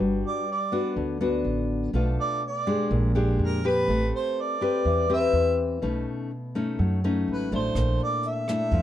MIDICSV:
0, 0, Header, 1, 5, 480
1, 0, Start_track
1, 0, Time_signature, 4, 2, 24, 8
1, 0, Key_signature, 1, "major"
1, 0, Tempo, 484692
1, 8736, End_track
2, 0, Start_track
2, 0, Title_t, "Harmonica"
2, 0, Program_c, 0, 22
2, 262, Note_on_c, 0, 74, 74
2, 473, Note_off_c, 0, 74, 0
2, 514, Note_on_c, 0, 74, 70
2, 943, Note_off_c, 0, 74, 0
2, 2183, Note_on_c, 0, 74, 85
2, 2394, Note_off_c, 0, 74, 0
2, 2448, Note_on_c, 0, 74, 80
2, 2871, Note_off_c, 0, 74, 0
2, 3405, Note_on_c, 0, 70, 67
2, 3606, Note_off_c, 0, 70, 0
2, 3633, Note_on_c, 0, 71, 74
2, 4063, Note_off_c, 0, 71, 0
2, 4114, Note_on_c, 0, 72, 79
2, 4367, Note_on_c, 0, 74, 75
2, 4381, Note_off_c, 0, 72, 0
2, 5062, Note_off_c, 0, 74, 0
2, 5082, Note_on_c, 0, 76, 104
2, 5508, Note_off_c, 0, 76, 0
2, 7249, Note_on_c, 0, 71, 66
2, 7448, Note_off_c, 0, 71, 0
2, 7478, Note_on_c, 0, 72, 78
2, 7906, Note_off_c, 0, 72, 0
2, 7956, Note_on_c, 0, 74, 84
2, 8195, Note_on_c, 0, 76, 82
2, 8210, Note_off_c, 0, 74, 0
2, 8736, Note_off_c, 0, 76, 0
2, 8736, End_track
3, 0, Start_track
3, 0, Title_t, "Nylon-string guitar"
3, 0, Program_c, 1, 24
3, 0, Note_on_c, 1, 55, 52
3, 0, Note_on_c, 1, 62, 60
3, 0, Note_on_c, 1, 66, 62
3, 0, Note_on_c, 1, 71, 64
3, 435, Note_off_c, 1, 62, 0
3, 437, Note_off_c, 1, 66, 0
3, 439, Note_off_c, 1, 71, 0
3, 712, Note_on_c, 1, 59, 56
3, 717, Note_on_c, 1, 62, 52
3, 720, Note_on_c, 1, 66, 64
3, 932, Note_off_c, 1, 55, 0
3, 957, Note_on_c, 1, 50, 54
3, 1156, Note_off_c, 1, 59, 0
3, 1158, Note_off_c, 1, 62, 0
3, 1160, Note_off_c, 1, 66, 0
3, 1194, Note_on_c, 1, 59, 57
3, 1200, Note_on_c, 1, 62, 60
3, 1205, Note_on_c, 1, 66, 67
3, 1877, Note_off_c, 1, 59, 0
3, 1880, Note_off_c, 1, 62, 0
3, 1882, Note_off_c, 1, 66, 0
3, 1893, Note_off_c, 1, 50, 0
3, 1919, Note_on_c, 1, 57, 59
3, 1926, Note_on_c, 1, 47, 55
3, 1930, Note_on_c, 1, 62, 51
3, 1933, Note_on_c, 1, 65, 59
3, 2395, Note_off_c, 1, 57, 0
3, 2399, Note_off_c, 1, 62, 0
3, 2402, Note_off_c, 1, 65, 0
3, 2643, Note_on_c, 1, 56, 64
3, 2643, Note_on_c, 1, 62, 58
3, 2646, Note_on_c, 1, 67, 56
3, 2858, Note_off_c, 1, 47, 0
3, 2889, Note_on_c, 1, 46, 54
3, 3081, Note_off_c, 1, 62, 0
3, 3082, Note_off_c, 1, 56, 0
3, 3083, Note_off_c, 1, 67, 0
3, 3118, Note_on_c, 1, 56, 61
3, 3126, Note_on_c, 1, 62, 65
3, 3127, Note_on_c, 1, 67, 65
3, 3560, Note_off_c, 1, 56, 0
3, 3562, Note_off_c, 1, 62, 0
3, 3564, Note_off_c, 1, 67, 0
3, 3603, Note_on_c, 1, 60, 59
3, 3612, Note_on_c, 1, 67, 62
3, 3618, Note_on_c, 1, 71, 63
3, 3819, Note_off_c, 1, 46, 0
3, 3854, Note_on_c, 1, 57, 55
3, 4522, Note_off_c, 1, 60, 0
3, 4527, Note_off_c, 1, 67, 0
3, 4528, Note_off_c, 1, 71, 0
3, 4566, Note_on_c, 1, 60, 56
3, 4574, Note_on_c, 1, 67, 57
3, 4576, Note_on_c, 1, 71, 60
3, 4782, Note_off_c, 1, 57, 0
3, 4812, Note_on_c, 1, 52, 57
3, 5005, Note_off_c, 1, 60, 0
3, 5006, Note_off_c, 1, 67, 0
3, 5009, Note_off_c, 1, 71, 0
3, 5047, Note_on_c, 1, 60, 65
3, 5047, Note_on_c, 1, 67, 69
3, 5054, Note_on_c, 1, 71, 66
3, 5723, Note_off_c, 1, 67, 0
3, 5724, Note_off_c, 1, 60, 0
3, 5727, Note_off_c, 1, 71, 0
3, 5741, Note_off_c, 1, 52, 0
3, 5760, Note_on_c, 1, 47, 50
3, 5767, Note_on_c, 1, 57, 57
3, 5773, Note_on_c, 1, 61, 58
3, 5776, Note_on_c, 1, 63, 56
3, 6239, Note_off_c, 1, 57, 0
3, 6240, Note_off_c, 1, 61, 0
3, 6244, Note_off_c, 1, 63, 0
3, 6488, Note_on_c, 1, 57, 58
3, 6494, Note_on_c, 1, 61, 50
3, 6495, Note_on_c, 1, 63, 58
3, 6697, Note_off_c, 1, 47, 0
3, 6725, Note_on_c, 1, 54, 58
3, 6926, Note_off_c, 1, 57, 0
3, 6927, Note_off_c, 1, 63, 0
3, 6928, Note_off_c, 1, 61, 0
3, 6973, Note_on_c, 1, 57, 63
3, 6978, Note_on_c, 1, 61, 60
3, 6980, Note_on_c, 1, 63, 63
3, 7408, Note_off_c, 1, 57, 0
3, 7409, Note_off_c, 1, 61, 0
3, 7410, Note_off_c, 1, 63, 0
3, 7449, Note_on_c, 1, 57, 65
3, 7455, Note_on_c, 1, 62, 61
3, 7460, Note_on_c, 1, 64, 59
3, 7658, Note_off_c, 1, 54, 0
3, 7688, Note_on_c, 1, 46, 51
3, 8366, Note_off_c, 1, 57, 0
3, 8367, Note_off_c, 1, 62, 0
3, 8371, Note_off_c, 1, 64, 0
3, 8406, Note_on_c, 1, 57, 57
3, 8412, Note_on_c, 1, 64, 60
3, 8413, Note_on_c, 1, 62, 59
3, 8620, Note_off_c, 1, 46, 0
3, 8644, Note_on_c, 1, 53, 55
3, 8736, Note_off_c, 1, 53, 0
3, 8736, Note_off_c, 1, 57, 0
3, 8736, Note_off_c, 1, 62, 0
3, 8736, Note_off_c, 1, 64, 0
3, 8736, End_track
4, 0, Start_track
4, 0, Title_t, "Upright bass"
4, 0, Program_c, 2, 32
4, 0, Note_on_c, 2, 31, 77
4, 219, Note_off_c, 2, 31, 0
4, 954, Note_on_c, 2, 38, 83
4, 1402, Note_off_c, 2, 38, 0
4, 1431, Note_on_c, 2, 33, 74
4, 1880, Note_off_c, 2, 33, 0
4, 1915, Note_on_c, 2, 35, 82
4, 2139, Note_off_c, 2, 35, 0
4, 2878, Note_on_c, 2, 34, 90
4, 3324, Note_off_c, 2, 34, 0
4, 3358, Note_on_c, 2, 41, 81
4, 3804, Note_off_c, 2, 41, 0
4, 3840, Note_on_c, 2, 33, 77
4, 4062, Note_off_c, 2, 33, 0
4, 4804, Note_on_c, 2, 40, 89
4, 5248, Note_off_c, 2, 40, 0
4, 5277, Note_on_c, 2, 40, 80
4, 5724, Note_off_c, 2, 40, 0
4, 5770, Note_on_c, 2, 35, 83
4, 5988, Note_off_c, 2, 35, 0
4, 6725, Note_on_c, 2, 42, 80
4, 7168, Note_off_c, 2, 42, 0
4, 7208, Note_on_c, 2, 32, 73
4, 7419, Note_off_c, 2, 32, 0
4, 7441, Note_on_c, 2, 33, 76
4, 7656, Note_off_c, 2, 33, 0
4, 7677, Note_on_c, 2, 34, 74
4, 7901, Note_off_c, 2, 34, 0
4, 8633, Note_on_c, 2, 41, 88
4, 8736, Note_off_c, 2, 41, 0
4, 8736, End_track
5, 0, Start_track
5, 0, Title_t, "Drums"
5, 7676, Note_on_c, 9, 36, 54
5, 7679, Note_on_c, 9, 37, 52
5, 7679, Note_on_c, 9, 42, 39
5, 7775, Note_off_c, 9, 36, 0
5, 7778, Note_off_c, 9, 37, 0
5, 7778, Note_off_c, 9, 42, 0
5, 7916, Note_on_c, 9, 42, 26
5, 8015, Note_off_c, 9, 42, 0
5, 8150, Note_on_c, 9, 42, 39
5, 8249, Note_off_c, 9, 42, 0
5, 8397, Note_on_c, 9, 37, 58
5, 8397, Note_on_c, 9, 42, 22
5, 8496, Note_off_c, 9, 37, 0
5, 8496, Note_off_c, 9, 42, 0
5, 8628, Note_on_c, 9, 42, 37
5, 8631, Note_on_c, 9, 36, 54
5, 8727, Note_off_c, 9, 42, 0
5, 8730, Note_off_c, 9, 36, 0
5, 8736, End_track
0, 0, End_of_file